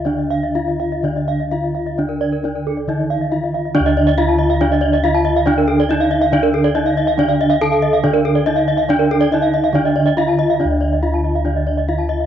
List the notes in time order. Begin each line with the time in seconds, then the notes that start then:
Already playing: D3
0.05 D3 D4 D5
0.18 D#5
0.31 F5
0.43 D#5
0.55 D#4 F4 F5
0.68 D#5
0.80 F5
0.92 D#5
1.03 D3 D4 D5
1.16 D#5
1.28 F5
1.40 D#5
1.51 D#4 F4 F5
1.64 D#5
1.75 F5
1.86 D#5
1.98 D3 D4 D5
2.09 A#4
2.21 D5
2.33 A#4
2.43 D4 D#4 D5
2.55 A#4
2.67 A4
2.77 D5
2.88 D3 D#3 D#4 D#5
3.00 D5
3.10 F5
3.21 D#5
3.32 D#4 F4 F5
3.44 D#5
3.54 F5
3.65 D#5
3.75 D3 D4 D5
3.80 D2
3.86 D#5
3.97 D5
4.07 D#5
4.18 D#4 F4 F5
4.28 A5
4.39 D#5
4.50 F5
4.61 D3 D4 D5
4.72 D#5
4.81 D5
4.93 D#5
5.03 D#4 F4 F5
5.15 A5
5.25 D#5
5.36 F5
5.46 D3 D4 D5
5.58 A#4
5.68 A4
5.80 D5
5.89 D#4 D#5
6.01 F5
6.11 D#5
6.22 F5
6.32 D3 D4 D5
6.43 A#4
6.54 A4
6.64 D5
6.75 D#4 D#5
6.86 F5
6.97 D#5
7.07 F5
7.18 D3 D4 D5
7.29 F5
7.41 D#5
7.50 F5
7.61 A4 A5
7.71 F5
7.82 D#5
7.93 F5
8.03 D3 D4 D5
8.13 A#4
8.25 A4
8.35 D5
8.46 D#4 D#5
8.56 F5
8.68 D#5
8.77 F5
8.88 D3 D4 D5
8.99 A#4
9.11 A4
9.21 D5
9.32 D#4 D#5
9.42 F5
9.54 D#5
9.64 F5
9.73 D3 D4 D5
9.85 D#5
9.96 D5
10.06 D#5
10.17 D#4 F4 F5
10.28 A5
10.39 D#5
10.50 F5
10.60 D3 D4 D5
10.64 D2
10.71 D#5
10.81 D5
10.93 D#5
11.02 D#4 F4 F5
11.14 A5
11.24 D#5
11.35 F5
11.45 D3 D4 D5
11.56 D#5
11.67 D5
11.78 D#5
11.88 D#4 F4 F5
11.98 A5
12.09 D#5
12.20 F5